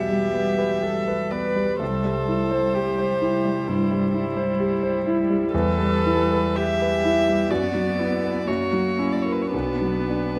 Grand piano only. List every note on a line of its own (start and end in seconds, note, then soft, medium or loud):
0.00 0.25 B2 soft
0.00 0.10 G3 soft
0.00 0.34 B3 soft
0.00 0.82 G4 soft
0.00 0.58 B4 soft
0.10 0.49 G3 soft
0.34 0.73 B3 soft
0.58 0.98 B4 soft
0.82 1.22 G4 soft
1.08 1.47 B4 soft
1.32 1.71 B3 soft
1.56 1.81 G3 soft
1.80 3.63 C2 soft
2.05 2.42 G3 soft
2.28 2.66 E4 soft
2.51 2.89 C5 soft
2.75 3.13 G4 soft
2.98 3.36 C5 soft
3.22 3.59 E4 soft
3.45 3.81 G3 soft
3.68 4.04 G2 soft
3.91 4.27 G3 soft
4.14 4.50 E4 soft
4.37 4.73 C5 soft
4.60 4.96 G4 soft
4.83 5.20 C5 soft
5.06 5.43 E4 soft
5.30 5.53 G3 soft
5.54 7.47 E2 medium
5.79 6.20 G3 soft
6.06 6.46 E4 soft
6.32 6.71 B4 soft
6.57 6.95 G4 soft
6.82 7.18 B4 soft
7.05 7.41 E4 soft
7.28 7.51 G3 soft
7.51 8.45 F#2 medium
7.74 8.13 F#3 soft
7.99 8.38 B3 soft
8.24 8.48 B4 soft
8.48 9.50 F#2 medium
8.73 9.15 F#3 soft
8.99 9.42 C#4 soft
9.26 9.53 A#4 soft
9.54 10.39 B1 soft
9.81 10.26 F#3 soft
10.09 10.39 D4 soft